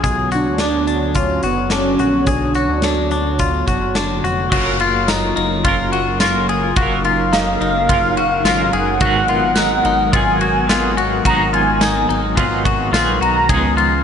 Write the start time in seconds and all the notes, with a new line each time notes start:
Already playing: B3
0.04 B1 D3 F#3 F#4 G#4 C#5, kick, closed hi-hat
0.32 D4 F#4, closed hi-hat
0.46 D2
0.58 D4, snare, closed hi-hat
0.87 D4, closed hi-hat
1.15 C#4 F4, kick, closed hi-hat
1.43 F#1 B3 F#4, closed hi-hat
1.70 C#4 D4, snare, closed hi-hat
1.99 A#1 F#4, closed hi-hat
2.27 B1 D4 G#4, kick, closed hi-hat
2.55 F#4, closed hi-hat
2.69 D2
2.82 D4, snare, closed hi-hat
3.11 D4, closed hi-hat
3.39 F4, kick, closed hi-hat
3.67 F#1 F#4, kick, closed hi-hat
3.95 D4, snare, closed hi-hat
4.24 F1 F#4, closed hi-hat
4.50 F#1 C#3 F#3 A#3 C#4 F4 F#4 A#4 C#5, kick, crash
4.54 F4 A#4
4.80 F4, ride
5.08 D#4, snare, ride, tambourine
5.36 F#1 D#4, ride
5.64 F#1 F#3 C#4 F4, kick, ride
5.68 A#4
5.92 F#4, ride
6.20 F#3 C#4 F4, snare, ride, tambourine
6.24 A#4
6.49 G#4, ride
6.76 F#1 F#3 C#4 D#4 F#4 F5, kick, ride
6.81 F4 A#4
7.04 F4, ride
7.33 D#4 F5, snare, ride, tambourine
7.61 F#1 D#4, ride
7.89 F#1 F#3 C#4 F4, kick, ride
7.93 A#4
8.17 F#4, ride
8.44 G#1 F#3 C#4 F4, snare, ride, tambourine
8.48 A#4
8.73 F#1 G#4 F#5, ride
8.99 G#1 G#2 D#3 F#3 G#3 B3 F#4, kick, ride
9.03 B3 D#4 G#4
9.28 F4, ride
9.55 D#4, snare, ride, tambourine
9.85 G#1 D#4, ride
10.12 G#1 F#3 B3 D#4 F4 G#5, kick, ride
10.16 G#4
10.41 F#4, ride
10.67 F#3 B3 D#4 F4, snare, ride, tambourine
10.71 G#4
10.97 F#4, ride
11.23 G#1 G#2 D#3 F#3 F#4 A#5, kick, ride
11.27 B3 D#4 G#4
11.53 F4 G#5, ride
11.81 D#4, snare, ride, tambourine
12.09 G#1 D#4, ride
12.35 G#1 F#3 B3 D#4 F4, kick, ride
12.40 G#4
12.65 F#4, kick, ride
12.92 A#1 F#3 B3 D#4 F4, snare, ride, tambourine
12.97 G#4
13.21 B1 F#4 A#5, ride
13.47 C#2 C#3 F3 G#3 B3 C#4 F4 G#4, kick, ride
13.51 B3 D#4 G#4
13.77 F4, ride